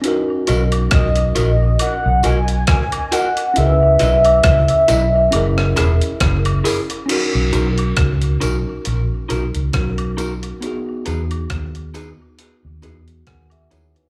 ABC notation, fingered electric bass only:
X:1
M:4/4
L:1/16
Q:"Swing 16ths" 1/4=68
K:B
V:1 name="Fingered electric bass" clef=bass
z2 B,,,2 B,,,2 A,,,2 z B,,, B,,,2 z4 | C,,2 B,,,2 C,, z B,,,2 F,,,2 E,,, z F,,,2 z2 | z B,,, B,,,2 C,,2 B,,, z A,,, z B,,, C,, B,,,4 | z2 E,,2 D,,3 z2 D,, E,,2 D,,2 D,, z |]